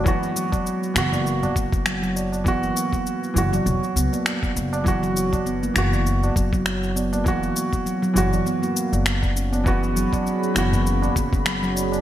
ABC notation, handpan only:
X:1
M:4/4
L:1/16
Q:"Swing 16ths" 1/4=100
K:F#mix
V:1 name="Handpan" clef=bass
z2 F, F, z2 B, A,4 z F, F, z2 | B, A,4 z F, F, z2 B, A,4 z | F, F, z2 B, A,4 z F, F, z2 B, A,- | A,3 z F, F, z2 B, A, z4 C B, |
z2 F, F, z2 B, A,4 z F, F, z2 |]